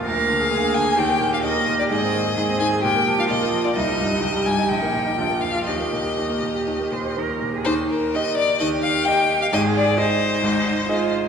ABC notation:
X:1
M:4/4
L:1/16
Q:1/4=130
K:Eb
V:1 name="Violin"
f6 a2 g3 f e3 d | e6 a2 g3 f e3 d | e6 a2 g6 f2 | e12 z4 |
c2 B2 e2 d2 e2 f2 g3 f | e2 d2 c8- c2 z2 |]
V:2 name="Cello"
B4 A4 G4 B4 | A4 A4 G4 F4 | E4 G4 E4 F4 | G4 G6 c2 B3 A |
z8 G8 | A4 E4 E4 F4 |]
V:3 name="Grand piano" clef=bass
D,, B, D, A D,, B, D, A E,, B, B,, G E,, B, B,, G | A,, C E, A A,, C E, A B,, B, F, F B,, B, F, F | C,, G, G,, E C,, G, G,, E B,,, B, B,, E B,,, B, F,, F | E,, B, B,, G E,, B, B,, G E,, B, B,, G E,, B, B,, G |
[E,,E,]4 [EGe]4 [E,,E,]4 [EGe]4 | [A,,,A,,]4 [EAe]4 [A,,,A,,]4 [EAe]4 |]